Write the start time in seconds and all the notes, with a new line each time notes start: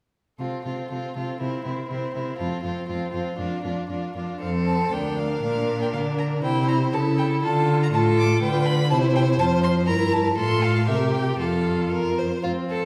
0.38 C3 C4 F4 A4
0.64 C3 C4 F4 A4
0.89 C3 C4 F4 A4
1.16 C3 C4 F4 A4
1.41 C3 C4 E4 A#4
1.65 C3 C4 E4 A#4
1.89 C3 C4 E4 A#4
2.14 C3 C4 E4 A#4
2.38 F2 C4 F4 A4
2.63 F2 C4 F4 A4
2.88 F2 C4 F4 A4
3.12 F2 C4 F4 A4
3.38 F2 D4 F4 A#4
3.63 F2 D4 F4 A#4
3.89 F2 D4 F4 A#4
4.15 F2 D4 F4 A#4
4.41 F2 C4 A4 F5
4.67 A5
4.92 D2 D4 A#4 G5
5.18 F5
5.43 A#2 D4 F5
5.81 G5
5.93 D3 F5
6.18 A#5
6.43 C3 E4 C5 G5
6.68 A#5
6.93 C#3 E4 A4 A5
7.18 G5
7.43 D3 F4 A4 A5
7.83 A#5
7.93 A2 F4 A4 A5
8.18 D6
8.42 D3 F4 B4 G5
8.66 B5
8.90 C3 E4 C5 A5
9.15 G5
9.39 F2 F4 A5
9.63 C6
9.87 G2 E4 A#4 A#5
10.13 A5
10.37 A2 F4 A4 C6
10.63 F5
10.88 C3 G4 A#4 E5
11.13 G5
11.39 F2 F4 A4 F5
11.92 A#4
12.18 C5
12.44 F2 C4 F4 F5
12.70 A4